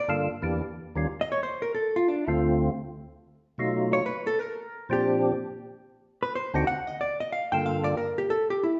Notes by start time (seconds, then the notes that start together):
Already playing: D5
0.08 G2 D3 A#3 F4 A4
0.42 E2 E3 A#3 D4 G4
0.95 D#2 D#3 G3 C#4 F4
1.21 D#5
1.32 C#5
1.43 C5
1.62 A#4
1.75 A4
1.96 F4
2.08 D4
2.27 D2 D3 A3 C4 F4
3.58 B2 F#3 A3 D#4 F4
3.93 C#5
4.06 B4
4.27 A4
4.39 A#4
4.89 A#2 F3 C4 D4 G4
6.23 B4
6.35 C5
6.54 D2 D3 C4 D#4 F#4 D5
6.67 F#5
6.87 D#5
7.01 D5
7.20 D#5
7.32 F5
7.52 G2 D3 A#3 F4 A4 G5
7.66 F5
7.84 D5
7.97 A#4
8.18 G4
8.30 A4
8.50 G4
8.63 E4